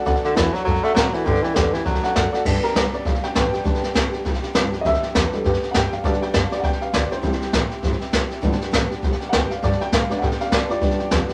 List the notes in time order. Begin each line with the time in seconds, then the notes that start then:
0.05 D2 D3 A3 D4 F#4 A4 D5 F#5, kick, snare
0.15 snare
0.22 D3 D4 F#4 A4 D5 F#5, muted upright bass stroke, snare
0.35 E2 D3 E3 A3 D4 F#4 A4 D5 F#5, kick, snare, hi-hat pedal
0.53 F#3 D4 F#4 A4 D5 F#5, muted upright bass stroke, snare
0.64 F#2 F#3 A3 D4 F#4 A4 D5 F#5, kick, snare
0.75 snare
0.82 A3 D4 F#4 A4 D5 F#5, muted upright bass stroke, snare
0.94 A2 D3 F#3 A3 D4 F#4 A4 D5 F#5, kick, snare, hi-hat pedal
1.13 E3 D4 F#4 A4 D5 F#5, muted upright bass stroke, snare
1.25 G2 D3 G3 B3 D4 G4 B4 D5 G5, kick, snare
1.35 snare
1.42 E3 G3 B3 D4 G4 B4 D5 G5, muted upright bass stroke, snare
1.54 E2 G2 D3 G3 B3 D4 G4 B4 D5 G5, kick, snare, hi-hat pedal
1.72 E3 G3 B3 D4 G4 B4 D5 G5, muted upright bass stroke, snare
1.84 D2 F#3 A3 D4 F#4 A4 D5 F#5, kick, snare
1.95 snare
2.03 D4 F#4 A4 D5 F#5, muted upright bass stroke, snare
2.15 F#2 D3 A3 D4 F#4 A4 D5 F#5, kick, snare, hi-hat pedal
2.32 D4 F#4 A4 D5 F#5, muted upright bass stroke, snare
2.45 G2 D3 G3 B3 D4 G4, kick, snare, crash
2.54 snare
2.62 G3 B3 D4 G4 A#4, muted upright bass stroke, snare
2.75 C2 G2 D3 G3 B3 D4 G4, kick, snare, hi-hat pedal
2.92 G3 B3 D4 G4 D5, muted upright bass stroke, snare
3.05 B1 G3 B3 D4 G4 F5, kick, snare
3.15 snare
3.22 G3 B3 D4 G4 G5, muted upright bass stroke, snare
3.35 A1 G2 D3 G3 B3 D4 G4 B4 G5, kick, snare, hi-hat pedal
3.52 G3 B3 D4 G4, muted upright bass stroke, snare
3.64 G1 G2 D3 G3 B3 D4 G4, kick, snare
3.74 snare
3.81 G3 B3 D4 G4, muted upright bass stroke, snare
3.94 A1 G2 D3 G3 B3 D4 G4, kick, snare, hi-hat pedal
4.11 G3 B3 D4 G4, muted upright bass stroke, snare
4.23 B1 G3 B3 D4 G4, kick, snare
4.34 snare
4.42 G3 B3 D4 G4, muted upright bass stroke, snare
4.54 C2 G2 D3 G3 B3 D4 G4, kick, snare, hi-hat pedal
4.71 G3 B3 D4 G4, muted upright bass stroke, snare
4.81 D2 G2 D3 G3 D#5, kick, snare
4.86 B3 D4 G4 E5
4.94 snare
5.02 G3 B3 D4 G4, muted upright bass stroke, snare
5.14 E2 G2 D3 G3 B3 D4 G4 B4, kick, snare, hi-hat pedal
5.32 G3 B3 D4 G4 A4, muted upright bass stroke, snare
5.43 F#2 G3 B3 D4 G4, kick, snare
5.53 snare
5.62 G3 B3 D4 G4, muted upright bass stroke, snare
5.71 G2 D3 G3 B3 F#5, kick, snare, hi-hat pedal
5.75 D4 G4 G5
5.91 G3 B3 D4 G4 F5, muted upright bass stroke, snare
6.04 G2 B2 D3 G3 B3 D4 G4 D5, kick, snare
6.13 snare
6.20 G3 B3 D4 G4 G5, muted upright bass stroke, snare
6.33 F#2 G2 D3 G3 B3 D4 G4 F5, kick, snare, hi-hat pedal
6.50 G3 B3 D4 G4 D5, muted upright bass stroke, snare
6.60 E2 G3 F#5, kick, snare
6.64 B3 D4 G4 G5
6.73 snare
6.80 G3 B3 D4 G4 F5, snare
6.92 D2 G2 D3 G3 B3 D4 G4 D5, kick, snare, hi-hat pedal
7.09 G3 B3 D4 E4 G4 C5, muted upright bass stroke, snare
7.22 C2 C3 G3 C4 E4 G4, kick, snare
7.32 snare
7.39 C4 E4 G4, muted upright bass stroke, snare
7.52 A1 C3 G3 C4 E4 G4, kick, snare, hi-hat pedal
7.70 C4 E4 G4, muted upright bass stroke, snare
7.82 G1 G3 C4 E4 G4, kick, snare
7.92 snare
7.99 C4 E4 G4, muted upright bass stroke, snare
8.12 F#1 C3 G3 C4 E4 G4, kick, snare, hi-hat pedal
8.29 C4 E4 G4, muted upright bass stroke, snare
8.41 G1 G2 D3 G3 B3 D4 G4, kick, snare
8.52 snare
8.59 G3 B3 D4 G4, muted upright bass stroke, snare
8.71 A1 G2 D3 G3 B3 D4 G4, kick, snare, hi-hat pedal
8.90 G3 B3 D4 G4, muted upright bass stroke, snare
9.02 B1 G3 B3 D4 G4, kick, snare
9.12 snare
9.20 G3 B3 D4 G4, muted upright bass stroke, snare
9.29 D2 G2 D3 F#5, kick, snare, hi-hat pedal
9.33 G3 B3 D4 G4 G5
9.50 G3 B3 D4 G4 F5, muted upright bass stroke, snare
9.62 G2 D3 G3 B3 D4 G4 D5, kick, snare
9.72 snare
9.79 G3 B3 D4 G4 G5, muted upright bass stroke, snare
9.92 G2 A2 D3 G3 B3 D4 G4 F5, kick, snare, hi-hat pedal
10.09 G3 B3 D4 G4 D5, muted upright bass stroke, snare
10.19 A2 G3 B3 F#5, kick, snare
10.23 D4 G4 G5
10.31 snare
10.39 G3 B3 D4 G4 F5, muted upright bass stroke, snare
10.52 G2 B2 D3 G3 B3 D4 G4 D5, kick, snare, hi-hat pedal
10.68 G3 B3 D4 F4 G4 D5, muted upright bass stroke, snare
10.81 G2 D3 G3 B3 D4 G4, kick, snare
10.91 snare
10.98 G3 B3 D4 G4, snare
11.11 D#2 G2 D3 G3 B3 D4 G4, kick, snare, hi-hat pedal
11.28 B3 D4 G4, muted upright bass stroke, snare